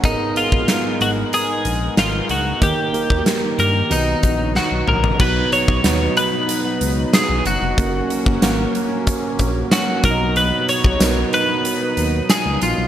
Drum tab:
CC |----------------|----------------|x---------------|----------------|
HH |x-x-x-x-x-x-x-x-|x-x-x-x-x-x-----|--x-x-x-x-x-x-x-|x-x-x-x-x-x-x-x-|
TB |----------------|----------------|----------------|----------------|
SD |----o-------o---|----o-------o---|----o-------o---|----o-------o---|
T2 |----------------|--------------o-|----------------|----------------|
FT |----------------|---------------o|----------------|----------------|
BD |o--o------------|o--o------o-----|o--o------------|o--o----o-o---o-|

CC |----------------|
HH |x-x-x-x-x-x-x-x-|
TB |----x-------x---|
SD |----o-------o---|
T2 |----------------|
FT |----------------|
BD |---o------------|